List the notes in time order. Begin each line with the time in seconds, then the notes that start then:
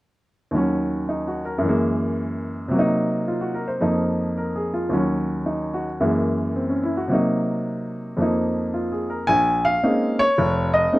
0.51 D#2 D#3 F#3
0.56 C#4
1.09 D#4
1.27 F#4
1.45 A#4
1.58 F#2 E3
1.66 G#3 A#3
2.68 C3 F#3
2.75 A#3 D#4
3.28 F4
3.41 F#4
3.54 A#4
3.68 C5
3.81 F2 F3 A#3 D#4
4.37 A#4
4.56 G#4
4.74 F4
4.89 D#2 D#3 F#3
4.94 C#4
5.46 D#4
5.74 F#4
6.00 F#2 E3 G#3 A#3
6.56 C4
6.69 C#4
6.83 E4
6.97 F#4
7.08 C3 F#3 A#3
7.13 D#4
8.17 F2 F3 A#3
8.22 D#4
8.74 F4
8.92 G#4
9.10 A#4
9.27 A#1 G#5
9.65 F5
9.83 G#3 A#3 C4 C#4 D#4
10.19 C#5
10.38 F1
10.74 D#5
10.92 G#3 A#3 C4 C#4 D#4